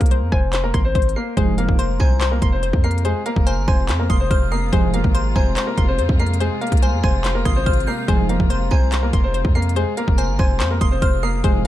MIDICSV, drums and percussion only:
0, 0, Header, 1, 2, 480
1, 0, Start_track
1, 0, Key_signature, -4, "minor"
1, 0, Tempo, 419580
1, 1567, Time_signature, 4, 2, 24, 8
1, 13350, End_track
2, 0, Start_track
2, 0, Title_t, "Drums"
2, 7, Note_on_c, 9, 42, 70
2, 8, Note_on_c, 9, 36, 98
2, 67, Note_off_c, 9, 42, 0
2, 67, Note_on_c, 9, 42, 82
2, 122, Note_off_c, 9, 36, 0
2, 127, Note_off_c, 9, 42, 0
2, 127, Note_on_c, 9, 42, 80
2, 241, Note_off_c, 9, 42, 0
2, 366, Note_on_c, 9, 37, 75
2, 368, Note_on_c, 9, 36, 98
2, 481, Note_off_c, 9, 37, 0
2, 482, Note_off_c, 9, 36, 0
2, 607, Note_on_c, 9, 39, 121
2, 607, Note_on_c, 9, 42, 87
2, 721, Note_off_c, 9, 39, 0
2, 721, Note_off_c, 9, 42, 0
2, 846, Note_on_c, 9, 37, 98
2, 846, Note_on_c, 9, 42, 71
2, 847, Note_on_c, 9, 36, 93
2, 961, Note_off_c, 9, 37, 0
2, 961, Note_off_c, 9, 42, 0
2, 962, Note_off_c, 9, 36, 0
2, 1087, Note_on_c, 9, 36, 95
2, 1087, Note_on_c, 9, 42, 44
2, 1167, Note_off_c, 9, 42, 0
2, 1167, Note_on_c, 9, 42, 60
2, 1201, Note_off_c, 9, 36, 0
2, 1247, Note_off_c, 9, 42, 0
2, 1247, Note_on_c, 9, 42, 73
2, 1361, Note_off_c, 9, 42, 0
2, 1567, Note_on_c, 9, 36, 113
2, 1567, Note_on_c, 9, 42, 73
2, 1681, Note_off_c, 9, 36, 0
2, 1681, Note_off_c, 9, 42, 0
2, 1807, Note_on_c, 9, 42, 78
2, 1921, Note_off_c, 9, 42, 0
2, 1928, Note_on_c, 9, 36, 94
2, 2042, Note_off_c, 9, 36, 0
2, 2047, Note_on_c, 9, 42, 82
2, 2161, Note_off_c, 9, 42, 0
2, 2288, Note_on_c, 9, 36, 102
2, 2403, Note_off_c, 9, 36, 0
2, 2527, Note_on_c, 9, 39, 127
2, 2527, Note_on_c, 9, 42, 89
2, 2641, Note_off_c, 9, 39, 0
2, 2641, Note_off_c, 9, 42, 0
2, 2767, Note_on_c, 9, 36, 93
2, 2767, Note_on_c, 9, 42, 77
2, 2881, Note_off_c, 9, 42, 0
2, 2882, Note_off_c, 9, 36, 0
2, 3007, Note_on_c, 9, 42, 75
2, 3122, Note_off_c, 9, 42, 0
2, 3127, Note_on_c, 9, 36, 97
2, 3241, Note_off_c, 9, 36, 0
2, 3247, Note_on_c, 9, 42, 43
2, 3327, Note_off_c, 9, 42, 0
2, 3327, Note_on_c, 9, 42, 60
2, 3407, Note_off_c, 9, 42, 0
2, 3407, Note_on_c, 9, 42, 73
2, 3487, Note_off_c, 9, 42, 0
2, 3487, Note_on_c, 9, 42, 72
2, 3601, Note_off_c, 9, 42, 0
2, 3727, Note_on_c, 9, 42, 76
2, 3841, Note_off_c, 9, 42, 0
2, 3848, Note_on_c, 9, 36, 96
2, 3962, Note_off_c, 9, 36, 0
2, 3966, Note_on_c, 9, 42, 85
2, 4081, Note_off_c, 9, 42, 0
2, 4208, Note_on_c, 9, 36, 101
2, 4322, Note_off_c, 9, 36, 0
2, 4447, Note_on_c, 9, 39, 127
2, 4447, Note_on_c, 9, 42, 88
2, 4561, Note_off_c, 9, 39, 0
2, 4561, Note_off_c, 9, 42, 0
2, 4687, Note_on_c, 9, 36, 91
2, 4687, Note_on_c, 9, 42, 72
2, 4801, Note_off_c, 9, 42, 0
2, 4802, Note_off_c, 9, 36, 0
2, 4927, Note_on_c, 9, 36, 99
2, 4927, Note_on_c, 9, 42, 75
2, 5041, Note_off_c, 9, 36, 0
2, 5041, Note_off_c, 9, 42, 0
2, 5407, Note_on_c, 9, 36, 116
2, 5407, Note_on_c, 9, 42, 70
2, 5521, Note_off_c, 9, 36, 0
2, 5522, Note_off_c, 9, 42, 0
2, 5647, Note_on_c, 9, 42, 80
2, 5762, Note_off_c, 9, 42, 0
2, 5767, Note_on_c, 9, 36, 98
2, 5882, Note_off_c, 9, 36, 0
2, 5887, Note_on_c, 9, 42, 82
2, 6002, Note_off_c, 9, 42, 0
2, 6128, Note_on_c, 9, 36, 101
2, 6243, Note_off_c, 9, 36, 0
2, 6367, Note_on_c, 9, 39, 125
2, 6367, Note_on_c, 9, 42, 91
2, 6481, Note_off_c, 9, 42, 0
2, 6482, Note_off_c, 9, 39, 0
2, 6607, Note_on_c, 9, 36, 93
2, 6607, Note_on_c, 9, 42, 79
2, 6721, Note_off_c, 9, 42, 0
2, 6722, Note_off_c, 9, 36, 0
2, 6847, Note_on_c, 9, 42, 75
2, 6962, Note_off_c, 9, 42, 0
2, 6967, Note_on_c, 9, 36, 100
2, 7081, Note_off_c, 9, 36, 0
2, 7087, Note_on_c, 9, 42, 45
2, 7167, Note_off_c, 9, 42, 0
2, 7167, Note_on_c, 9, 42, 58
2, 7247, Note_off_c, 9, 42, 0
2, 7247, Note_on_c, 9, 42, 74
2, 7327, Note_off_c, 9, 42, 0
2, 7327, Note_on_c, 9, 42, 71
2, 7441, Note_off_c, 9, 42, 0
2, 7567, Note_on_c, 9, 42, 50
2, 7627, Note_off_c, 9, 42, 0
2, 7627, Note_on_c, 9, 42, 58
2, 7687, Note_off_c, 9, 42, 0
2, 7687, Note_on_c, 9, 42, 72
2, 7688, Note_on_c, 9, 36, 94
2, 7747, Note_off_c, 9, 42, 0
2, 7747, Note_on_c, 9, 42, 82
2, 7802, Note_off_c, 9, 36, 0
2, 7807, Note_off_c, 9, 42, 0
2, 7807, Note_on_c, 9, 42, 84
2, 7922, Note_off_c, 9, 42, 0
2, 8047, Note_on_c, 9, 37, 77
2, 8048, Note_on_c, 9, 36, 101
2, 8162, Note_off_c, 9, 37, 0
2, 8163, Note_off_c, 9, 36, 0
2, 8287, Note_on_c, 9, 39, 121
2, 8287, Note_on_c, 9, 42, 87
2, 8402, Note_off_c, 9, 39, 0
2, 8402, Note_off_c, 9, 42, 0
2, 8527, Note_on_c, 9, 36, 92
2, 8527, Note_on_c, 9, 37, 97
2, 8527, Note_on_c, 9, 42, 73
2, 8641, Note_off_c, 9, 37, 0
2, 8642, Note_off_c, 9, 36, 0
2, 8642, Note_off_c, 9, 42, 0
2, 8767, Note_on_c, 9, 36, 97
2, 8767, Note_on_c, 9, 42, 47
2, 8847, Note_off_c, 9, 42, 0
2, 8847, Note_on_c, 9, 42, 62
2, 8881, Note_off_c, 9, 36, 0
2, 8927, Note_off_c, 9, 42, 0
2, 8927, Note_on_c, 9, 42, 74
2, 9042, Note_off_c, 9, 42, 0
2, 9247, Note_on_c, 9, 36, 115
2, 9247, Note_on_c, 9, 42, 71
2, 9361, Note_off_c, 9, 36, 0
2, 9361, Note_off_c, 9, 42, 0
2, 9487, Note_on_c, 9, 42, 76
2, 9602, Note_off_c, 9, 42, 0
2, 9608, Note_on_c, 9, 36, 95
2, 9722, Note_off_c, 9, 36, 0
2, 9727, Note_on_c, 9, 42, 82
2, 9841, Note_off_c, 9, 42, 0
2, 9968, Note_on_c, 9, 36, 102
2, 10083, Note_off_c, 9, 36, 0
2, 10207, Note_on_c, 9, 39, 125
2, 10207, Note_on_c, 9, 42, 91
2, 10322, Note_off_c, 9, 39, 0
2, 10322, Note_off_c, 9, 42, 0
2, 10447, Note_on_c, 9, 42, 75
2, 10448, Note_on_c, 9, 36, 96
2, 10562, Note_off_c, 9, 36, 0
2, 10562, Note_off_c, 9, 42, 0
2, 10687, Note_on_c, 9, 42, 74
2, 10802, Note_off_c, 9, 42, 0
2, 10807, Note_on_c, 9, 36, 101
2, 10922, Note_off_c, 9, 36, 0
2, 10928, Note_on_c, 9, 42, 44
2, 11008, Note_off_c, 9, 42, 0
2, 11008, Note_on_c, 9, 42, 59
2, 11088, Note_off_c, 9, 42, 0
2, 11088, Note_on_c, 9, 42, 73
2, 11168, Note_off_c, 9, 42, 0
2, 11168, Note_on_c, 9, 42, 70
2, 11282, Note_off_c, 9, 42, 0
2, 11408, Note_on_c, 9, 42, 81
2, 11522, Note_off_c, 9, 42, 0
2, 11528, Note_on_c, 9, 36, 100
2, 11643, Note_off_c, 9, 36, 0
2, 11648, Note_on_c, 9, 42, 80
2, 11763, Note_off_c, 9, 42, 0
2, 11889, Note_on_c, 9, 36, 103
2, 12003, Note_off_c, 9, 36, 0
2, 12128, Note_on_c, 9, 39, 127
2, 12128, Note_on_c, 9, 42, 89
2, 12243, Note_off_c, 9, 39, 0
2, 12243, Note_off_c, 9, 42, 0
2, 12368, Note_on_c, 9, 36, 95
2, 12368, Note_on_c, 9, 42, 74
2, 12482, Note_off_c, 9, 36, 0
2, 12482, Note_off_c, 9, 42, 0
2, 12607, Note_on_c, 9, 36, 95
2, 12607, Note_on_c, 9, 42, 73
2, 12722, Note_off_c, 9, 36, 0
2, 12722, Note_off_c, 9, 42, 0
2, 13087, Note_on_c, 9, 36, 115
2, 13087, Note_on_c, 9, 42, 73
2, 13202, Note_off_c, 9, 36, 0
2, 13202, Note_off_c, 9, 42, 0
2, 13350, End_track
0, 0, End_of_file